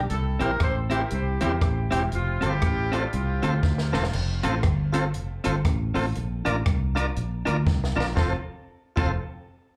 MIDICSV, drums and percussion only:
0, 0, Header, 1, 2, 480
1, 0, Start_track
1, 0, Key_signature, -1, "major"
1, 0, Tempo, 503778
1, 98, Time_signature, 4, 2, 24, 8
1, 9303, End_track
2, 0, Start_track
2, 0, Title_t, "Drums"
2, 92, Note_on_c, 9, 42, 72
2, 188, Note_off_c, 9, 42, 0
2, 384, Note_on_c, 9, 42, 78
2, 480, Note_off_c, 9, 42, 0
2, 573, Note_on_c, 9, 37, 106
2, 577, Note_on_c, 9, 36, 102
2, 578, Note_on_c, 9, 42, 69
2, 668, Note_off_c, 9, 37, 0
2, 672, Note_off_c, 9, 36, 0
2, 673, Note_off_c, 9, 42, 0
2, 863, Note_on_c, 9, 42, 87
2, 958, Note_off_c, 9, 42, 0
2, 1052, Note_on_c, 9, 42, 60
2, 1147, Note_off_c, 9, 42, 0
2, 1339, Note_on_c, 9, 42, 89
2, 1434, Note_off_c, 9, 42, 0
2, 1539, Note_on_c, 9, 36, 110
2, 1541, Note_on_c, 9, 37, 114
2, 1542, Note_on_c, 9, 42, 76
2, 1634, Note_off_c, 9, 36, 0
2, 1637, Note_off_c, 9, 37, 0
2, 1637, Note_off_c, 9, 42, 0
2, 1826, Note_on_c, 9, 42, 88
2, 1922, Note_off_c, 9, 42, 0
2, 2018, Note_on_c, 9, 42, 73
2, 2113, Note_off_c, 9, 42, 0
2, 2305, Note_on_c, 9, 42, 86
2, 2400, Note_off_c, 9, 42, 0
2, 2495, Note_on_c, 9, 37, 112
2, 2501, Note_on_c, 9, 36, 106
2, 2501, Note_on_c, 9, 42, 74
2, 2591, Note_off_c, 9, 37, 0
2, 2596, Note_off_c, 9, 42, 0
2, 2597, Note_off_c, 9, 36, 0
2, 2789, Note_on_c, 9, 42, 81
2, 2885, Note_off_c, 9, 42, 0
2, 2979, Note_on_c, 9, 42, 66
2, 3075, Note_off_c, 9, 42, 0
2, 3265, Note_on_c, 9, 42, 85
2, 3360, Note_off_c, 9, 42, 0
2, 3458, Note_on_c, 9, 38, 54
2, 3460, Note_on_c, 9, 36, 109
2, 3553, Note_off_c, 9, 38, 0
2, 3555, Note_off_c, 9, 36, 0
2, 3604, Note_on_c, 9, 38, 64
2, 3699, Note_off_c, 9, 38, 0
2, 3749, Note_on_c, 9, 38, 86
2, 3844, Note_off_c, 9, 38, 0
2, 3844, Note_on_c, 9, 38, 96
2, 3937, Note_on_c, 9, 49, 100
2, 3939, Note_off_c, 9, 38, 0
2, 4033, Note_off_c, 9, 49, 0
2, 4223, Note_on_c, 9, 42, 89
2, 4318, Note_off_c, 9, 42, 0
2, 4413, Note_on_c, 9, 37, 111
2, 4418, Note_on_c, 9, 42, 74
2, 4420, Note_on_c, 9, 36, 110
2, 4508, Note_off_c, 9, 37, 0
2, 4514, Note_off_c, 9, 42, 0
2, 4516, Note_off_c, 9, 36, 0
2, 4701, Note_on_c, 9, 42, 95
2, 4796, Note_off_c, 9, 42, 0
2, 4895, Note_on_c, 9, 42, 63
2, 4990, Note_off_c, 9, 42, 0
2, 5183, Note_on_c, 9, 42, 90
2, 5279, Note_off_c, 9, 42, 0
2, 5382, Note_on_c, 9, 36, 111
2, 5385, Note_on_c, 9, 37, 113
2, 5385, Note_on_c, 9, 42, 87
2, 5477, Note_off_c, 9, 36, 0
2, 5480, Note_off_c, 9, 37, 0
2, 5481, Note_off_c, 9, 42, 0
2, 5669, Note_on_c, 9, 46, 53
2, 5764, Note_off_c, 9, 46, 0
2, 5862, Note_on_c, 9, 42, 75
2, 5958, Note_off_c, 9, 42, 0
2, 6153, Note_on_c, 9, 42, 88
2, 6248, Note_off_c, 9, 42, 0
2, 6345, Note_on_c, 9, 37, 117
2, 6347, Note_on_c, 9, 36, 107
2, 6350, Note_on_c, 9, 42, 75
2, 6440, Note_off_c, 9, 37, 0
2, 6443, Note_off_c, 9, 36, 0
2, 6446, Note_off_c, 9, 42, 0
2, 6640, Note_on_c, 9, 42, 86
2, 6735, Note_off_c, 9, 42, 0
2, 6825, Note_on_c, 9, 42, 66
2, 6920, Note_off_c, 9, 42, 0
2, 7115, Note_on_c, 9, 42, 85
2, 7210, Note_off_c, 9, 42, 0
2, 7304, Note_on_c, 9, 36, 116
2, 7307, Note_on_c, 9, 38, 63
2, 7400, Note_off_c, 9, 36, 0
2, 7402, Note_off_c, 9, 38, 0
2, 7468, Note_on_c, 9, 38, 70
2, 7563, Note_off_c, 9, 38, 0
2, 7626, Note_on_c, 9, 38, 101
2, 7722, Note_off_c, 9, 38, 0
2, 7783, Note_on_c, 9, 38, 89
2, 7784, Note_on_c, 9, 36, 114
2, 7878, Note_off_c, 9, 38, 0
2, 7880, Note_off_c, 9, 36, 0
2, 8548, Note_on_c, 9, 49, 86
2, 8549, Note_on_c, 9, 36, 101
2, 8644, Note_off_c, 9, 36, 0
2, 8644, Note_off_c, 9, 49, 0
2, 9303, End_track
0, 0, End_of_file